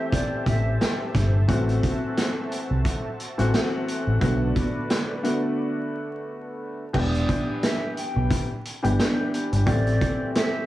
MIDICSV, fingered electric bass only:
0, 0, Header, 1, 2, 480
1, 0, Start_track
1, 0, Key_signature, 1, "minor"
1, 0, Tempo, 681818
1, 1048, Time_signature, 4, 2, 24, 8
1, 7505, End_track
2, 0, Start_track
2, 0, Title_t, "Fingered electric bass"
2, 0, Program_c, 0, 33
2, 328, Note_on_c, 0, 33, 98
2, 542, Note_off_c, 0, 33, 0
2, 810, Note_on_c, 0, 31, 93
2, 1022, Note_off_c, 0, 31, 0
2, 1049, Note_on_c, 0, 33, 107
2, 1262, Note_off_c, 0, 33, 0
2, 1906, Note_on_c, 0, 36, 88
2, 1998, Note_off_c, 0, 36, 0
2, 2384, Note_on_c, 0, 33, 92
2, 2478, Note_off_c, 0, 33, 0
2, 2866, Note_on_c, 0, 33, 82
2, 2958, Note_off_c, 0, 33, 0
2, 2969, Note_on_c, 0, 35, 103
2, 3182, Note_off_c, 0, 35, 0
2, 4889, Note_on_c, 0, 28, 104
2, 5102, Note_off_c, 0, 28, 0
2, 5745, Note_on_c, 0, 35, 94
2, 5838, Note_off_c, 0, 35, 0
2, 6225, Note_on_c, 0, 31, 97
2, 6318, Note_off_c, 0, 31, 0
2, 6706, Note_on_c, 0, 31, 90
2, 6799, Note_off_c, 0, 31, 0
2, 6808, Note_on_c, 0, 33, 111
2, 7022, Note_off_c, 0, 33, 0
2, 7505, End_track
0, 0, End_of_file